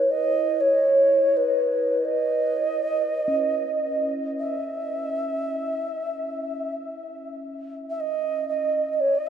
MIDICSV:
0, 0, Header, 1, 3, 480
1, 0, Start_track
1, 0, Tempo, 500000
1, 8918, End_track
2, 0, Start_track
2, 0, Title_t, "Ocarina"
2, 0, Program_c, 0, 79
2, 0, Note_on_c, 0, 73, 63
2, 98, Note_on_c, 0, 75, 66
2, 112, Note_off_c, 0, 73, 0
2, 578, Note_on_c, 0, 73, 66
2, 592, Note_off_c, 0, 75, 0
2, 1311, Note_on_c, 0, 71, 57
2, 1325, Note_off_c, 0, 73, 0
2, 1966, Note_on_c, 0, 75, 71
2, 1981, Note_off_c, 0, 71, 0
2, 3943, Note_off_c, 0, 75, 0
2, 4213, Note_on_c, 0, 76, 71
2, 6478, Note_off_c, 0, 76, 0
2, 7582, Note_on_c, 0, 76, 53
2, 7679, Note_on_c, 0, 75, 69
2, 7694, Note_off_c, 0, 76, 0
2, 8135, Note_off_c, 0, 75, 0
2, 8141, Note_on_c, 0, 75, 72
2, 8571, Note_off_c, 0, 75, 0
2, 8571, Note_on_c, 0, 75, 46
2, 8640, Note_on_c, 0, 73, 66
2, 8654, Note_off_c, 0, 75, 0
2, 8782, Note_on_c, 0, 75, 69
2, 8797, Note_off_c, 0, 73, 0
2, 8905, Note_off_c, 0, 75, 0
2, 8918, End_track
3, 0, Start_track
3, 0, Title_t, "Singing bowl"
3, 0, Program_c, 1, 14
3, 0, Note_on_c, 1, 64, 46
3, 3146, Note_on_c, 1, 61, 41
3, 5131, Note_off_c, 1, 64, 0
3, 8918, Note_off_c, 1, 61, 0
3, 8918, End_track
0, 0, End_of_file